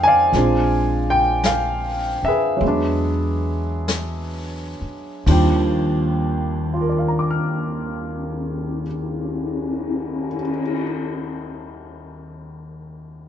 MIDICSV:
0, 0, Header, 1, 6, 480
1, 0, Start_track
1, 0, Key_signature, -3, "major"
1, 0, Tempo, 1092896
1, 148, Time_signature, 4, 2, 24, 8
1, 632, Tempo, 1174168
1, 1112, Tempo, 1268499
1, 1592, Tempo, 1385681
1, 2072, Tempo, 1452785
1, 4721, End_track
2, 0, Start_track
2, 0, Title_t, "Grand piano"
2, 0, Program_c, 0, 0
2, 0, Control_c, 0, 64, 127
2, 0, Note_on_c, 0, 53, 45
2, 0, Note_on_c, 0, 56, 46
2, 0, Note_on_c, 0, 60, 43
2, 0, Note_on_c, 0, 63, 54
2, 0, Note_on_c, 0, 68, 51
2, 0, Note_on_c, 0, 72, 49
2, 0, Note_on_c, 0, 77, 76
2, 0, Note_on_c, 0, 79, 79
2, 15, Note_on_c, 0, 80, 94
2, 32, Note_on_c, 0, 74, 64
2, 34, Note_off_c, 0, 77, 0
2, 34, Note_on_c, 0, 77, 69
2, 135, Note_off_c, 0, 53, 0
2, 141, Note_off_c, 0, 56, 0
2, 141, Note_on_c, 0, 53, 40
2, 144, Note_off_c, 0, 72, 0
2, 145, Note_off_c, 0, 68, 0
2, 147, Note_on_c, 0, 56, 35
2, 150, Note_off_c, 0, 60, 0
2, 152, Note_off_c, 0, 63, 0
2, 154, Control_c, 0, 64, 0
2, 155, Note_off_c, 0, 79, 0
2, 156, Note_on_c, 0, 60, 36
2, 161, Note_on_c, 0, 62, 47
2, 232, Control_c, 0, 64, 127
2, 484, Note_on_c, 0, 79, 81
2, 497, Note_off_c, 0, 80, 0
2, 626, Note_off_c, 0, 79, 0
2, 633, Note_off_c, 0, 77, 0
2, 639, Note_on_c, 0, 77, 70
2, 955, Note_off_c, 0, 74, 0
2, 962, Note_on_c, 0, 76, 83
2, 969, Note_off_c, 0, 77, 0
2, 976, Note_on_c, 0, 68, 51
2, 976, Note_on_c, 0, 71, 51
2, 1093, Note_on_c, 0, 54, 44
2, 1102, Note_off_c, 0, 56, 0
2, 1109, Note_off_c, 0, 53, 0
2, 1109, Note_on_c, 0, 56, 42
2, 1116, Note_off_c, 0, 60, 0
2, 1118, Note_off_c, 0, 62, 0
2, 1118, Control_c, 0, 64, 0
2, 1123, Note_on_c, 0, 59, 39
2, 1136, Note_on_c, 0, 62, 51
2, 1179, Control_c, 0, 64, 127
2, 1903, Note_off_c, 0, 76, 0
2, 1909, Note_off_c, 0, 68, 0
2, 1909, Note_off_c, 0, 71, 0
2, 2064, Note_off_c, 0, 54, 0
2, 2071, Note_off_c, 0, 56, 0
2, 2071, Note_on_c, 0, 39, 51
2, 2073, Note_on_c, 0, 51, 43
2, 2076, Note_off_c, 0, 62, 0
2, 2076, Control_c, 0, 64, 0
2, 2076, Note_on_c, 0, 53, 46
2, 2077, Note_off_c, 0, 59, 0
2, 2077, Note_on_c, 0, 55, 44
2, 2081, Note_on_c, 0, 62, 56
2, 2086, Note_on_c, 0, 79, 54
2, 2137, Control_c, 0, 64, 127
2, 2557, Note_on_c, 0, 65, 37
2, 2582, Note_on_c, 0, 70, 34
2, 2609, Note_on_c, 0, 74, 36
2, 2639, Note_on_c, 0, 77, 32
2, 2672, Note_on_c, 0, 82, 31
2, 2707, Note_on_c, 0, 86, 29
2, 2745, Note_on_c, 0, 89, 30
2, 3246, Note_off_c, 0, 39, 0
2, 3248, Note_off_c, 0, 51, 0
2, 3248, Note_off_c, 0, 79, 0
2, 3251, Note_off_c, 0, 53, 0
2, 3253, Note_off_c, 0, 55, 0
2, 3257, Note_off_c, 0, 62, 0
2, 3719, Note_off_c, 0, 65, 0
2, 3744, Note_off_c, 0, 70, 0
2, 3771, Note_off_c, 0, 74, 0
2, 3802, Note_off_c, 0, 77, 0
2, 3834, Note_off_c, 0, 82, 0
2, 3870, Note_off_c, 0, 86, 0
2, 3908, Note_off_c, 0, 89, 0
2, 4721, End_track
3, 0, Start_track
3, 0, Title_t, "Upright bass"
3, 0, Program_c, 1, 32
3, 0, Note_on_c, 1, 41, 76
3, 128, Note_off_c, 1, 41, 0
3, 144, Note_on_c, 1, 34, 63
3, 937, Note_off_c, 1, 34, 0
3, 1109, Note_on_c, 1, 40, 78
3, 1899, Note_off_c, 1, 40, 0
3, 2072, Note_on_c, 1, 39, 70
3, 3234, Note_off_c, 1, 39, 0
3, 4721, End_track
4, 0, Start_track
4, 0, Title_t, "Cymbal swell"
4, 2401, Note_on_c, 9, 59, 35
4, 3901, Note_off_c, 9, 59, 0
4, 4721, End_track
5, 0, Start_track
5, 0, Title_t, "Muted upright bass strokes"
5, 954, Note_on_c, 9, 29, 36
5, 995, Note_off_c, 9, 29, 0
5, 1913, Note_on_c, 9, 29, 31
5, 1948, Note_off_c, 9, 29, 0
5, 4721, End_track
6, 0, Start_track
6, 0, Title_t, "Drums"
6, 146, Note_on_c, 9, 25, 28
6, 146, Note_on_c, 9, 38, 24
6, 190, Note_off_c, 9, 38, 0
6, 630, Note_off_c, 9, 25, 0
6, 630, Note_on_c, 9, 25, 33
6, 630, Note_on_c, 9, 38, 39
6, 630, Note_on_c, 9, 44, 47
6, 671, Note_off_c, 9, 38, 0
6, 671, Note_off_c, 9, 44, 0
6, 1111, Note_off_c, 9, 25, 0
6, 1111, Note_on_c, 9, 25, 31
6, 1591, Note_off_c, 9, 25, 0
6, 1591, Note_on_c, 9, 25, 32
6, 1591, Note_on_c, 9, 38, 39
6, 1591, Note_on_c, 9, 44, 55
6, 1626, Note_off_c, 9, 38, 0
6, 1626, Note_off_c, 9, 44, 0
6, 2072, Note_on_c, 9, 36, 44
6, 2073, Note_on_c, 9, 49, 43
6, 2105, Note_off_c, 9, 36, 0
6, 2106, Note_off_c, 9, 49, 0
6, 2301, Note_off_c, 9, 25, 0
6, 4721, End_track
0, 0, End_of_file